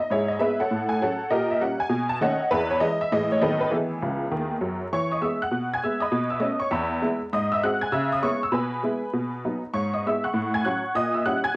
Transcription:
0.00 D#5
0.10 G#2 E4 G#4 C#5
0.28 D#5
0.39 G#3 B3 E4 G#4 B4 E5
0.60 A4 C#5 F#5
0.71 A2
0.89 G#5
1.02 F#3 C#4 A4 C#5 F#5
1.31 A#2 G4 A#4 D#5
1.51 E5
1.61 G3 A#3 C#4 F#5
1.80 G#5
1.89 B2
2.09 A5
2.21 D#3 A3 C#4 C#5 D#5 F#5
2.51 E2 E4 G#4 B4
2.70 C#5
2.80 E3 G#3 E4 D#5
3.01 E5
3.12 A2 E3 G#3 E4 D#5
3.32 C#5
3.41 D#3 F#3 A3 B3 A4 B4 D#5
3.61 B4
3.71 E3 B3 E4 G#4
4.02 C#2 C#3
4.31 D#2 D#3
4.61 F#2 F#3
4.92 E3 C#5 C#6
5.11 D#5 D#6
5.21 G#3 B3 E5 E6
5.42 F#5 F#6
5.51 B2
5.74 G#5 G#6
5.84 G#3 B3 E5 E6
6.00 D#5 B5 D#6
6.12 B2
6.30 E5 E6
6.39 A3 B3 C#4 D#5 D#6
6.59 C#5 C#6
6.71 E2 E5 B5 E6
7.02 G#3 B3 E4
7.33 G#2 D#5 D#6
7.52 E5 E6
7.63 G#3 C4 F#4 F#5 F#6
7.81 G#5 G#6
7.92 C#3 E5 E6
8.12 D#6
8.22 G#3 B3 E4 C#5 C#6
8.43 E6
8.52 B2 B4 G#5 B5
8.83 G#3 B3 E4
9.13 B2
9.45 F#3 B3 D#4
9.74 G#2 C#5 C#6
9.94 D#5 D#6
10.06 G#3 B3 E4 E5 E6
10.24 F#5 C#6 F#6
10.34 A2
10.54 G#5 G#6
10.65 F#3 C#4 F#5 C#6 F#6
10.95 A#2 D#5 D#6
11.14 E5 E6
11.26 G3 C#4 E4 F#5 F#6
11.44 G#5 G#6

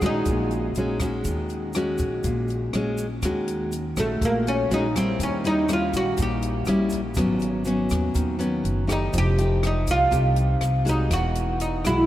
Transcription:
Already playing: D#3
0.02 A#1 G#3 C#4 F#4, kick, cross-stick, closed hi-hat, shaker
0.06 D#4
0.25 A#1 A#2, kick, closed hi-hat, shaker
0.51 closed hi-hat, shaker
0.75 A#1 G#3 C#4 F#4, closed hi-hat, shaker
1.00 G#3 C#4 F#4, kick, cross-stick, closed hi-hat, shaker
1.25 D#2 D#3, kick, closed hi-hat, shaker
1.49 closed hi-hat, shaker
1.73 G#3 C#4 F#4, cross-stick, closed hi-hat, shaker
1.98 A#1, kick, closed hi-hat, shaker
2.24 A#1 A#2, kick, closed hi-hat, shaker
2.48 closed hi-hat, shaker
2.73 A#1 G#3 C#4 F#4, cross-stick, closed hi-hat
2.98 closed hi-hat, shaker
3.22 D#2 D#3 G#3 C#4 F#4, kick, cross-stick, closed hi-hat, shaker
3.48 closed hi-hat, shaker
3.72 closed hi-hat, shaker
3.97 A#1 G#3 A3 C#4 F#4, kick, cross-stick, closed hi-hat, shaker
4.21 A#1 A#2 A#3, kick, closed hi-hat, shaker
4.47 C#4, closed hi-hat, shaker
4.70 A#1 G#3 C#4 D#4 F#4, closed hi-hat, shaker
4.95 G3 C4 C#4 E4, kick, cross-stick, closed hi-hat, shaker
5.20 D#2 D#3 C#4, kick, closed hi-hat, shaker
5.44 G3 C#4 D#4 E4, closed hi-hat, shaker
5.68 G3 C#4 E4, cross-stick, closed hi-hat, shaker
5.73 F4
5.93 A#1 F#4, kick, closed hi-hat, shaker
6.17 A#1 A#2, kick, closed hi-hat, shaker
6.22 G4
6.42 closed hi-hat, shaker
6.65 A#1 G3 C#4 E4, cross-stick, closed hi-hat, shaker
6.90 kick, closed hi-hat, shaker
7.15 G#1 G#2 F#3 B3 C#4, kick, cross-stick, closed hi-hat, shaker
7.40 closed hi-hat, shaker
7.65 F#3 B3 C#4, closed hi-hat, shaker
7.90 D#2, kick, cross-stick, closed hi-hat, shaker
8.15 D#2 D#3, kick, closed hi-hat, shaker
8.39 F#3 B3 C#4, closed hi-hat, shaker
8.64 F#1, closed hi-hat
8.87 A3 D#4 G4, kick, cross-stick, closed hi-hat, shaker
8.92 D#4
9.13 F1 F3, kick, closed hi-hat, shaker
9.18 G4
9.38 A3 D#4 G4, closed hi-hat, shaker
9.63 D#4, cross-stick, closed hi-hat
9.87 C2 F4, kick, closed hi-hat, shaker
10.11 C2 C3 A3 D#4 G4, kick, closed hi-hat, shaker
10.36 closed hi-hat, shaker
10.61 C2, cross-stick, closed hi-hat, shaker
10.85 G#3 D#4 F#4, kick, closed hi-hat, shaker
10.89 D#4
11.11 E1 E3 F#4, kick, cross-stick, closed hi-hat, shaker
11.35 closed hi-hat, shaker
11.60 D#4, closed hi-hat, shaker
11.84 B1 G#3 E4 F#4, kick, cross-stick, closed hi-hat, shaker

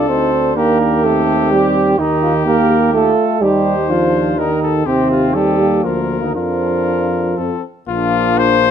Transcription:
Already playing: C2 D4 F4 A4
0.09 D2 C4 D#4 C5
0.33 D4
0.56 D#2 A#3 G4 A#4
0.80 G4
1.04 A3 C4 A4
1.52 G3 G4
1.99 D#2 D#3 D#4 G4
2.22 F4
2.46 A#3 G4 A#4
2.70 G4
2.93 A3 F4 A4
3.41 D#2 G3 D#4 G4 C5
3.90 F3 D4 F4
4.38 D#3 D#4 A#4
4.62 A4
4.86 D#2 C3 C4 G4
5.11 F4
5.34 G3 C4 G4 A4
5.59 A#3
5.84 D2 F3 F4 A#4
6.22 D#3 D#4
6.35 F2 F3 D4 F4 A#4
7.37 F2 C4 A4
7.88 A#1 F3 A#3 D4 F4
8.38 C5

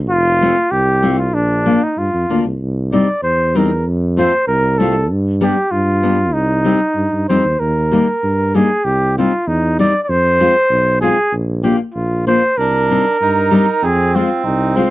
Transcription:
Already playing: D#2
0.10 F1 F4
0.42 A3 C4 F4
0.71 C2 G4
1.03 A3 C4 F4
1.19 F4
1.33 A#1 D4
1.66 A#3 D4 F4
1.83 D#4
1.97 G2 F4
2.14 F2
2.30 D2 A#3 D4 F4
2.45 C2
2.60 C2
2.92 G3 C4 D#4 D5
3.23 E2 C5
3.55 G3 C4 D#4 A#4
3.86 F2
4.17 A3 C4 F4 C5
4.47 C2 A#4
4.78 A3 C4 F4 A4
5.11 G2
5.41 G3 B3 D4 G4
5.71 G2 F4
6.03 G3 B3 D4
6.33 C2 D#4
6.65 G3 C4 D#4
6.95 G2
7.13 G2
7.29 F2 G3 C4 D#4 C5
7.45 D#2
7.60 D#2 A#4
7.91 G3 A#3 D#4
8.23 G2
8.54 G3 A#3 D#4 G#4
8.85 C2 G4
9.18 G3 C4 D#4 F4
9.47 E2 D#4
9.79 G3 C4 D#4 D5
10.03 D5
10.09 F2 C5
10.40 G#3 C4 F4
10.71 B1
11.01 G#3 C4 F4 G#4
11.33 A#1
11.63 A#3 D4 F4 G4
11.94 A#1 F4
12.27 A#3 D4 F4 C5
12.58 C2 D4 A#4
12.90 G3 C4 D#4
13.21 G2 D#4
13.51 G3 C4 D#4
13.82 F2 C4 G#4
14.15 G#3 C4 F4
14.44 C2 D#4
14.76 G#3 C4 F4 C5

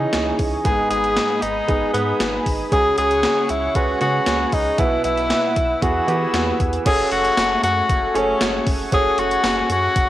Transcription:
Already playing: C#3 E3 C#4 D#4 E4 G#4 D#5 C#6
0.13 C#2, snare, closed hi-hat
0.39 C#2, kick, open hi-hat
0.64 G#1 G#2 G#3 B3 D#4 G#4 B5 D#6, kick, closed hi-hat
0.90 G#1 G#4, closed hi-hat
1.04 closed hi-hat
1.17 snare, closed hi-hat
1.42 G#1 D#4, closed hi-hat
1.68 G#1 G#3 B3 D#4 G#4, kick, closed hi-hat
1.93 G#2 G#3 B3 D#4 B4, closed hi-hat
2.20 G#1, snare, closed hi-hat
2.46 G#1, kick, open hi-hat
2.71 C#2 C#3 G#3 C#4 F#4 G#4 C#5 F#5 C#6, kick, closed hi-hat
2.98 C#2 G#4, closed hi-hat
3.11 closed hi-hat
3.23 snare, closed hi-hat
3.49 C#2 E4, closed hi-hat
3.75 C#2 G#3 C#4 F#4 B4, kick, closed hi-hat
4.01 C#3 G#3 C#4 F#4 G#4, closed hi-hat
4.26 C#2, snare, closed hi-hat
4.53 C#2 D#4, kick, open hi-hat
4.78 B1 B2 B3 E4 F#4 B4 E5 E6, kick, closed hi-hat
5.04 B1 E4, closed hi-hat
5.18 closed hi-hat
5.30 snare, closed hi-hat
5.56 B1, kick, closed hi-hat
5.81 E2 E3 B3 E4 F#4 G#4 B4 G#5 E6, kick, closed hi-hat
6.07 E3 B3 E4 F#4 G4, closed hi-hat
6.14 G#4
6.33 E2, snare, closed hi-hat
6.60 E2, kick, closed hi-hat
6.73 closed hi-hat
6.85 F#1 A3 C#4 F#4 G#4 A4 C#5 F#5 G#5 C#6, kick, closed hi-hat, crash
7.11 F#1 F#4, closed hi-hat
7.25 closed hi-hat
7.37 F#1, snare, closed hi-hat, tambourine
7.63 F#2 F#4, closed hi-hat
7.89 F#1, kick, closed hi-hat
8.14 F#1 C#4 F#4 G#4 A4 C#5, closed hi-hat
8.41 F#1, snare, closed hi-hat, tambourine
8.67 F#1, kick, open hi-hat
8.92 F#1 C#4 F#4 G#4 A4 C#5, kick, closed hi-hat
9.18 F#1 F#4, closed hi-hat
9.31 closed hi-hat
9.44 F#1, snare, closed hi-hat, tambourine
9.70 F#2 F#4, closed hi-hat
9.96 F#1, kick, closed hi-hat

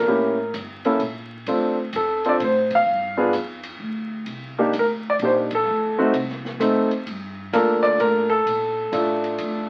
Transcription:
Already playing: A#4
0.06 A1 A#3 C#4 E4 G4
0.54 G1, kick, hi-hat pedal, ride
0.85 A#3 C#4 E4 A4, ride
1.00 A#1, kick, ride
1.46 D2 C4 D4 F4 A4, kick, ride
1.93 F2 A4, kick, hi-hat pedal, ride
2.24 C4 D4 F4 A4, ride
2.29 D5
2.39 A2, kick, ride
2.44 C5
2.71 kick, ride
2.75 F5
2.87 G2
3.17 B3 D4 F4 G#4
3.33 F2, kick, hi-hat pedal, ride
3.63 ride
3.79 D2, kick
4.26 C2, kick, ride
4.58 A#3 D4 D#4 G4
4.73 D2, kick, hi-hat pedal, ride
4.79 A#4
5.10 D5
5.19 A#1 A#3 D4 D#4 G4, kick, ride
5.25 C5
5.51 kick, ride
5.55 A4
5.66 D2
5.98 A3 C4 D#4 F#4
6.13 C2, kick, ride
6.29 snare
6.45 snare
6.60 D#2 A3 C4 D#4 A4, kick, hi-hat pedal, ride
6.91 ride
7.06 G2, kick, ride
7.53 D2 A#3 D4 F4 A4 A#4, kick, hi-hat pedal, ride
7.83 D5, ride
7.99 A2 A#4, kick, ride
8.30 A4
8.46 A#2, kick, ride
8.92 A2 A3 D4 F4 A4, kick, hi-hat pedal, ride
9.24 ride
9.38 F2, kick, ride

